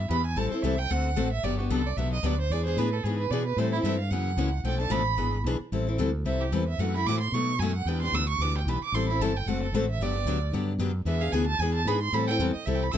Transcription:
Already playing: E5
0.10 E2 E3 B3 D4 G4 B5
0.26 G#5
0.36 A1 E3 G3 C4 E4 A4 A5
0.51 C4 E4 A4 C5
0.63 C2 E3 G3 C4 E4 A4 E5
0.78 G5
0.90 D2 D3 A3 C4 F#4 A4 F#5
1.16 A1 D3 A3 C4 F#4 A4
1.33 E5
1.43 G1 D3 F#3 B3 D4 G4 D5
1.58 B3 D4 F#4 G4
1.70 C2 D3 F#3 B3 D4 G4 A4
1.86 D5
1.97 B1 D3 F#3 B3 D4 G4 E5
2.14 D#5
2.23 D2 D3 F#3 B3 D4 G4 D5
2.41 C5
2.50 E2 E3 B3 D4 G#4 D5
2.66 B3 D4 G#4 C5
2.77 A2 E3 B3 D4 G#4 B4
2.93 A4
3.04 G#2 E3 B3 D4 G#4
3.19 B4
3.31 B2 E3 B3 D4 G#4 D5
3.46 B4
3.57 A2 E3 G3 C4 E4 A4 C5
3.72 E4 A4
3.76 C4
3.83 G2 E3 G3 C4 E4 A4 E5
3.99 F5
4.11 F#2 C#3 E3 A#3 C#4 F#4 F#5
4.37 C#2 C#3 E3 A#3 C#4 F#4
4.64 B1 B2 F3 A3 D4 A4 G5
4.80 A3 D4 A4 A5
4.90 A1 B2 F3 A3 D4 A4 B5
5.18 G#1 E3 B3 D4 G#4
5.44 B1 E3 B3 D4 G#4
5.60 muted fretless electric bass stroke
5.72 A1 E3 G3 C4 E4 A4
5.87 C4 E4 A4
5.98 D2 E3 G3 C4 E4 A4
6.25 C2 E3 G3 C4 E4 A4 E5
6.41 G4
6.52 E2 E3 G3 C4 E4 A4 B4
6.68 E5
6.78 F#2 C3 E3 A3 E4 F#4 F#5
6.95 A3 E4 F#4 B5
7.06 A2 C3 E3 A3 E4 F#4 D6
7.20 C6
7.32 B2 F#3 A3 D#4 F#4 C#6
7.59 F#2 B2 F#3 A3 D#4 F#4 G#5
7.75 F#5
7.85 E2 E3 B3 D4 G4 G5
8.02 B3 D4 G4 C6
8.12 D2 E3 B3 D4 G4 E6
8.29 C#6
8.38 D2 E3 B3 D4 G4 D6
8.58 G5
8.65 B1 E3 B3 D4 G4 B5
8.84 D6
8.92 A1 E3 G3 C4 E4 A4 C6
9.09 C4 E4 A4 B5
9.19 G1 E3 G3 C4 E4 A4 A5
9.37 G5
9.46 F#1 D3 A3 C4 F#4 A4 F#5
9.63 A4
9.73 A1 D3 A3 C4 F#4 A4 C5
9.90 E5
9.99 G1 D3 F#3 B3 D4 G4 D5
10.16 B3 D4 G4
10.25 D2 D3 F#3 B3 D4 G4
10.52 G2 D3 F#3 B3 D4 G4
10.79 F#2 D3 F#3 B3 D4 G4
11.05 E2 E3 B3 D4 G#4 E5
11.21 B3 D4 G#4 F5
11.32 D2 E3 B3 D4 G#4 G#5
11.47 A5
11.59 E2 E3 B3 D4 G#4 G#5
11.75 A5
11.85 G#2 E3 B3 D4 G#4 B5
12.01 C6
12.13 A2 E3 G3 C4 E4 A4 B5
12.27 E4 A4 G5
12.31 C4
12.39 E2 E3 G3 C4 E4 A4
12.53 D#5, muted fretless electric bass stroke
12.66 C2 E3 G3 C4 E4 A4 E5
12.75 G5
12.83 B5
12.92 B1 E3 G3 C4 E4 A4 E6

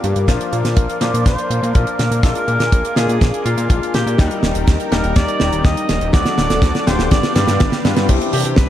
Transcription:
Already playing: A#3 D4 G4 A#4 D5 F5 D6
0.04 G2 G4, closed hi-hat
0.16 G2, closed hi-hat
0.28 A#1 F3 A#3 D4 F4 A#4 D5 F5 D6, kick, snare, closed hi-hat
0.41 closed hi-hat
0.53 A#2, closed hi-hat
0.65 A#2, snare, closed hi-hat
0.77 A#1, kick, closed hi-hat
0.89 closed hi-hat
1.01 A#2 F3 A#3 D4 F4 D5, snare, closed hi-hat
1.14 A#2, closed hi-hat
1.26 A#1 C5, kick, snare, closed hi-hat
1.38 closed hi-hat
1.50 A#2, closed hi-hat
1.63 A#2, closed hi-hat
1.75 A#1 F3 A#3 D4 F4 A#4, kick, closed hi-hat
1.87 closed hi-hat
1.99 A#2, snare, closed hi-hat
2.11 A#2, closed hi-hat
2.23 A#1 G#3 A#3 D4 F4 A#4 G#5, kick, snare, closed hi-hat
2.35 closed hi-hat
2.48 A#2, closed hi-hat
2.60 A#2, snare, closed hi-hat
2.72 A#1, kick, closed hi-hat
2.85 closed hi-hat
2.96 A#2 G#3 A#3 D4 F4 G#4, snare, closed hi-hat
3.09 A#2, closed hi-hat
3.21 A#1, kick, snare, closed hi-hat
3.34 closed hi-hat
3.45 A#2 F4, closed hi-hat
3.58 A#2, closed hi-hat
3.70 A#1 G#3 A#3 D4 F4, kick, closed hi-hat
3.83 closed hi-hat
3.94 A#2 G4, snare, closed hi-hat
4.06 A#2, closed hi-hat
4.18 D#2 G3 A#3 D#4 G4 G5 A#5, kick, snare, closed hi-hat
4.31 closed hi-hat
4.43 D#1, snare, closed hi-hat
4.55 D#1, closed hi-hat
4.67 D#2, kick, snare, closed hi-hat
4.80 closed hi-hat
4.92 D#1 G3 A#3 D#4 G4 A#4, snare, closed hi-hat
5.04 D#1, closed hi-hat
5.16 D#2 D5, kick, snare, closed hi-hat
5.28 closed hi-hat
5.40 D#1, snare, closed hi-hat
5.53 D#1, closed hi-hat
5.65 D#2 G3 A#3 D#4 G4 D#5, kick, snare, closed hi-hat
5.77 closed hi-hat
5.89 D#1, snare, closed hi-hat
6.01 D#1, closed hi-hat
6.13 D2 F#3 A3 D4 F#4 A4 D5 F#5 D6, kick, snare, closed hi-hat
6.26 snare, closed hi-hat
6.38 D1, snare, closed hi-hat
6.50 D1, snare, closed hi-hat
6.62 D2, kick, snare, closed hi-hat
6.75 snare, closed hi-hat
6.87 D1 B3 D4 F4 G4 C5, snare, closed hi-hat
6.99 D1, snare, closed hi-hat
7.11 G1 B4 D5 F5 G5, kick, snare, closed hi-hat
7.23 snare, closed hi-hat
7.35 G2 D5, snare, closed hi-hat
7.48 G2, snare, closed hi-hat
7.60 G1, kick, snare, closed hi-hat
7.72 snare, closed hi-hat
7.84 G2 B3 D4 F4 B4, snare, closed hi-hat
7.96 G2, snare, closed hi-hat
8.09 C2 E3 C4 D4 E4 G4, kick, closed hi-hat, crash
8.21 closed hi-hat
8.33 C3 G4, open hi-hat
8.45 C3, closed hi-hat
8.56 C2 B4, kick, snare, closed hi-hat

